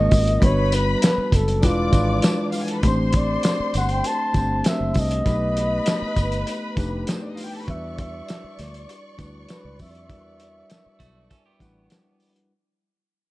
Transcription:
Already playing: tine electric piano G#3 A#3 C#4 F4 A#4, flugelhorn D#5
0.11 fingered electric bass G#1, kick, open hi-hat, tambourine
0.28 closed hi-hat
0.40 fingered electric bass G1, tine electric piano G3 B3 D4 F#4 B4, string section B4 B5, kick, closed hi-hat
0.44 flugelhorn C#5
0.72 flugelhorn B4, closed hi-hat, tambourine
1.02 flugelhorn B4, snare, closed hi-hat, tambourine
1.18 muted fingered electric bass stroke
1.32 fingered electric bass F#1, flugelhorn A4, kick, closed hi-hat, tambourine
1.48 closed hi-hat
1.61 fingered electric bass E1, tine electric piano G#3 D4 E4 F4 B4, string section D5 D6, kick, closed hi-hat, tambourine
1.65 flugelhorn F4
1.91 fingered electric bass G#1, tine electric piano E3 G#3 D4 F4 B4, kick, closed hi-hat, tambourine
2.22 snare, closed hi-hat, tambourine
2.52 string section F4 F5, open hi-hat, tambourine
2.60 string section G#4 G#5
2.67 string section A4 A5, closed hi-hat
2.76 string section B4 B5
2.82 fingered electric bass A1, tine electric piano A3 C4 D4 G4 C5, string section C5 C6, kick, closed hi-hat, tambourine
2.86 flugelhorn C5
3.13 flugelhorn D5, kick, closed hi-hat
3.43 snare, closed hi-hat, tambourine
3.60 muted fingered electric bass stroke
3.74 fingered electric bass G1, flugelhorn F#5, closed hi-hat, tambourine
3.89 flugelhorn G5, closed hi-hat
4.04 flugelhorn A5, closed hi-hat, tambourine
4.33 fingered electric bass G1, tine electric piano A3 C4 D4 G4 C5, kick, closed hi-hat, tambourine
4.64 flugelhorn E5, snare, closed hi-hat, tambourine
4.81 fingered electric bass F#1
4.94 fingered electric bass C2, kick, open hi-hat, tambourine
4.99 flugelhorn D#5
5.11 closed hi-hat
5.25 fingered electric bass B1, tine electric piano A3 B3 D#4 G4 B4, string section B4 B5, kick, closed hi-hat, tambourine
5.57 closed hi-hat
5.86 snare, closed hi-hat, tambourine
6.02 muted fingered electric bass stroke
6.16 fingered electric bass G1, kick, closed hi-hat, tambourine
6.32 closed hi-hat
6.47 closed hi-hat, tambourine
6.76 fingered electric bass F1, tine electric piano A3 D4 D#4 G4 B4, kick, closed hi-hat
6.80 tambourine
7.07 snare, closed hi-hat, tambourine
7.14 string section C4 C5
7.23 string section D4 D5
7.30 string section D#4 D#5
7.37 string section F4 F5, open hi-hat, tambourine
7.46 string section G4 G5
7.54 string section A4 A5
7.60 string section B4 B5
7.67 fingered electric bass E2, tine electric piano G3 D4 E4 F#4 B4, string section D5 C#6, flugelhorn E5, kick, closed hi-hat
7.98 flugelhorn E5, kick, closed hi-hat
8.29 snare, closed hi-hat, tambourine
8.44 muted fingered electric bass stroke
8.59 fingered electric bass D2, flugelhorn D5, snare, closed hi-hat, tambourine
8.74 closed hi-hat
8.89 closed hi-hat, tambourine
9.17 fingered electric bass D2, tine electric piano G3 D4 E4 F#4 B4, kick, closed hi-hat, tambourine
9.49 flugelhorn B4, snare, closed hi-hat, tambourine
9.65 fingered electric bass C#2
9.79 fingered electric bass F2, flugelhorn E5, kick, open hi-hat, tambourine
9.95 closed hi-hat
10.08 fingered electric bass E2, tine electric piano G3 D4 E4 F#4 A#4, kick, closed hi-hat
10.17 tine electric piano B4
10.40 closed hi-hat, tambourine
10.70 snare, closed hi-hat, tambourine
10.86 muted fingered electric bass stroke
11.00 fingered electric bass B1, clean electric guitar A3 F#4, kick, closed hi-hat, tambourine
11.30 clean electric guitar C#4 A4, kick, closed hi-hat, tambourine
11.46 clean electric guitar B3 G4
11.59 fingered electric bass A1, tine electric piano G3 D4 E4 B4 F#5, kick, closed hi-hat, tambourine
11.90 snare, closed hi-hat, tambourine
12.20 open hi-hat, tambourine
12.36 closed hi-hat

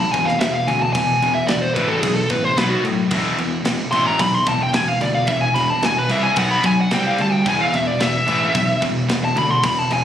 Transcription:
Already playing: distorted electric guitar E2 B2
0.00 lead electric guitar A5
0.12 fingered electric bass E1, distorted electric guitar E2 B2, lead electric guitar G#5, kick, crash
0.25 lead electric guitar F5, snare
0.40 fingered electric bass E1, distorted electric guitar E2 B2, lead electric guitar E5, snare, crash
0.54 lead electric guitar F5
0.67 fingered electric bass D2, distorted electric guitar E2 B2, lead electric guitar G#5, crash
0.82 lead electric guitar A5
0.93 fingered electric bass E1, distorted electric guitar E2 B2, lead electric guitar G#5, kick, crash
1.21 fingered electric bass E1, distorted electric guitar E2 B2, crash
1.35 lead electric guitar E5
1.47 fingered electric bass E1, distorted electric guitar E2 B2, lead electric guitar D5, snare, crash
1.62 lead electric guitar C5
1.74 fingered electric bass A1, distorted electric guitar E2 B2 E3, lead electric guitar B4, kick, crash
1.88 lead electric guitar A4
2.00 fingered electric bass B1, distorted electric guitar E2 B2, lead electric guitar G#4, kick, crash
2.15 lead electric guitar A4
2.30 fingered electric bass A1, distorted electric guitar E2 B2, lead electric guitar B4, kick, crash
2.44 lead electric guitar C5
2.57 fingered electric bass B1, distorted electric guitar B2 F#3 B3, lead electric guitar B4, snare, crash
2.70 lead electric guitar F#4
2.84 fingered electric bass A2, distorted electric guitar B2 F#3, crash
3.10 fingered electric bass E1, distorted electric guitar E2 B2 E3, kick, crash
3.37 fingered electric bass E1, distorted electric guitar E2 B2, crash
3.65 fingered electric bass E1, distorted electric guitar E2 B2, snare, crash
3.92 fingered electric bass A1, distorted electric guitar E2 B2 E3, lead electric guitar C6, crash
4.07 lead electric guitar A#5
4.19 fingered electric bass B1, distorted electric guitar E2 B2, lead electric guitar B5, kick, crash
4.35 lead electric guitar C6
4.47 fingered electric bass E1, distorted electric guitar E2 B2, lead electric guitar A5, kick, crash
4.63 lead electric guitar G5
4.73 fingered electric bass E1, distorted electric guitar E2 B2, lead electric guitar G#5, snare, crash
4.88 lead electric guitar F5
5.01 fingered electric bass D2, distorted electric guitar E2 B2, lead electric guitar D5, crash
5.14 lead electric guitar F5
5.26 fingered electric bass E1, distorted electric guitar E2 B2, lead electric guitar E5, kick, crash
5.41 lead electric guitar G#5
5.54 fingered electric bass E1, distorted electric guitar E2 B2, lead electric guitar B5, crash
5.70 lead electric guitar A5
5.81 fingered electric bass E1, distorted electric guitar E2 B2, snare, crash
5.85 lead electric guitar G#5
5.98 lead electric guitar B4
6.08 fingered electric bass C2, distorted electric guitar E2 B2 E3, lead electric guitar E5, crash
6.23 lead electric guitar G#5
6.36 fingered electric bass B1, distorted electric guitar B2 F#3 B3, lead electric guitar F#5, kick, crash
6.51 lead electric guitar B5
6.63 fingered electric bass B1, distorted electric guitar B2 F#3, lead electric guitar G#5, kick, crash
6.81 lead electric guitar F#5
6.91 fingered electric bass C2, distorted electric guitar C3 G3 C4, lead electric guitar G5, snare, crash
7.07 lead electric guitar F5
7.18 fingered electric bass D2, distorted electric guitar C3 G3, lead electric guitar A5, crash
7.32 lead electric guitar G5
7.45 fingered electric bass E1, distorted electric guitar E2 B2 E3, lead electric guitar G#5, kick, crash
7.61 lead electric guitar F5
7.73 fingered electric bass E1, distorted electric guitar E2 B2, lead electric guitar E5, crash
7.87 lead electric guitar D5
7.99 fingered electric bass E1, distorted electric guitar E2 B2, lead electric guitar E5, snare, crash
8.27 fingered electric bass A1, distorted electric guitar E2 B2 E3, crash
8.55 fingered electric bass B1, distorted electric guitar E2 B2, kick, crash
8.82 fingered electric bass E1, distorted electric guitar E2 B2, kick, crash
9.09 fingered electric bass E1, distorted electric guitar E2 B2, snare, crash
9.25 lead electric guitar A5
9.35 fingered electric bass D2, distorted electric guitar E2 B2, lead electric guitar B5, crash
9.51 lead electric guitar C6
9.63 fingered electric bass E1, distorted electric guitar E2 B2, lead electric guitar B5, kick, crash
9.79 lead electric guitar A5
9.90 fingered electric bass E1, distorted electric guitar E2 B2, lead electric guitar G#5, crash

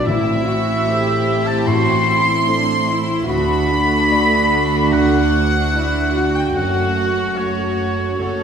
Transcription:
0.06 grand piano A1 A2, double bass section A1, timpani A2, viola section A3 C4, french horn section C4 E4, violin section E4 E5, cello section E4, oboe E5, clarinet E5
0.47 cello section F#4
0.87 grand piano A3 A4 C5, cello section G4
1.46 violin section A5, oboe A5, clarinet A5
1.67 grand piano A1 A2, cello section F#4, oboe C6, violin section C6, clarinet C6
2.07 cello section E4
2.47 grand piano A3 A4 C5, cello section D4
2.88 cello section E4
3.27 double bass section D2, grand piano D2 D3, french horn section A3 F#4, viola section A3 D4, cello section F#4, violin section F#4 B5, oboe B5, clarinet B5
3.70 cello section D4
4.10 grand piano A3 F#4 D5
4.92 grand piano D2 D3, violin section F#5, oboe F#5, clarinet F#5
5.75 grand piano A3 F#4 D5, cello section E4
6.17 cello section F#4
6.35 oboe G5, violin section G5, clarinet G5
6.56 grand piano F#1 F#2, double bass section F#2, viola section A3 C#4, french horn section A3 F#4, violin section F#4 F#5, oboe F#5, clarinet F#5
7.36 grand piano A3 F#4 C#5, viola section A3 C#4, french horn section A3 F#4, violin section F#4 C#5, oboe C#5, clarinet C#5
8.18 grand piano F#1 F#2, viola section A3 C#4, french horn section A3 F#4, violin section F#4 C#5, cello section A4, oboe C#5, clarinet C#5

